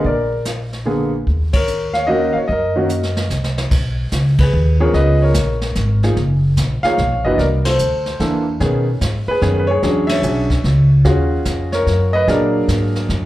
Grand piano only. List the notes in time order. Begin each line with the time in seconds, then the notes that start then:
0.06 A#4 D5
0.86 D3 A#3 B3 G#4
1.53 A#4 C#5
1.94 C#5 F5
2.07 D#3 A#3 C#4 F#4 D#5
2.11 A#4
2.33 F5
2.37 C#5
2.48 D#5
2.52 A#4
2.76 D#3 A#3 C#4 F#4
4.40 G#4 B4
4.80 F3 B3 C#4 G#4 A#4 C#5
4.94 B4 D#5
5.22 A#4 C#5
6.03 F3 A#3 D#4 G#4
6.83 F3 A#3 D#4 G#4 C#5 F5
7.25 E3 A#3 D4 F#4 B4 D#5
7.38 A#4 D5
7.65 A4 C5
8.20 E3 A#3 D4 A4
8.60 D#3 B3 C#4 G#4
9.28 G#4 B4
9.42 D#3 B3 C#4 G#4
9.59 B4
9.67 G#4 C#5
9.83 F#3 C#4 D4 G#4
10.07 E5
10.12 C#5
10.23 F#3 C#4 D4 G#4
11.05 C#4 F4 F#4 G#4
11.72 A#4 C#5
12.13 B4 D#5
12.28 F#3 A#3 D4 G#4 A#4 D5